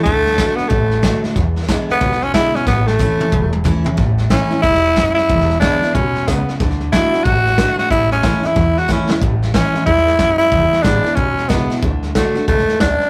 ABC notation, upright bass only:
X:1
M:4/4
L:1/8
Q:"Swing" 1/4=184
K:A
V:1 name="Upright bass" clef=bass
D,,3 z A,,,3 z | E,,3 z B,,,3 z | A,,,3 z E,,,3 z | A,,,3 z E,,,3 z |
E,,,3 z B,,, z C,, z | D,,3 z A,,,3 z | A,,,3 z E,,3 z | A,,,3 z E,,3 z |
E,,, z A,,, z B,,, z C,, z | D,,3 z C,, z D,, z |]